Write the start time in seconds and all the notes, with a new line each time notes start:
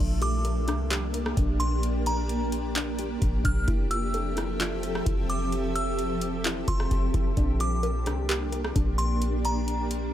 0.00 A#1 A#3 D4 G4
0.21 G4 D6, closed hi-hat
0.45 A#4, closed hi-hat
0.68 C2 D4, cross-stick, closed hi-hat
0.91 G4, clap, closed hi-hat
1.14 A#4, closed hi-hat
1.26 cross-stick
1.37 A#1 D4, kick, closed hi-hat
1.60 C6, closed hi-hat
1.83 closed hi-hat
2.06 A#5, closed hi-hat
2.29 closed hi-hat
2.52 closed hi-hat
2.76 D4, clap, closed hi-hat
2.99 G4, closed hi-hat
3.22 A1, kick, closed hi-hat
3.44 A#1 D4 F6, kick, closed hi-hat
3.68 F1 F3 C4 E4 A4 E5, kick, closed hi-hat
3.90 F4 E6, closed hi-hat
4.14 A4, closed hi-hat
4.37 E4, cross-stick, closed hi-hat
4.60 F4, clap, closed hi-hat
4.83 A4, closed hi-hat
4.95 cross-stick
5.05 F1 E4, kick, closed hi-hat
5.30 D6, closed hi-hat
5.52 closed hi-hat
5.75 E6, closed hi-hat
5.99 closed hi-hat
6.21 closed hi-hat
6.45 E4, clap, closed hi-hat
6.68 F1 F4 C6, kick, closed hi-hat
6.80 cross-stick
6.91 F1, kick, closed hi-hat
7.14 F1 E4, kick, closed hi-hat
7.37 A#1 A#3 D4, kick, closed hi-hat
7.60 G4 D6, closed hi-hat
7.83 A#4, closed hi-hat
8.06 C2 D4, cross-stick, closed hi-hat
8.29 G4, clap, closed hi-hat
8.52 A#4, closed hi-hat
8.64 cross-stick
8.76 A#1 D4, kick, closed hi-hat
8.98 C6, closed hi-hat
9.22 closed hi-hat
9.45 A#5, closed hi-hat
9.68 closed hi-hat
9.91 closed hi-hat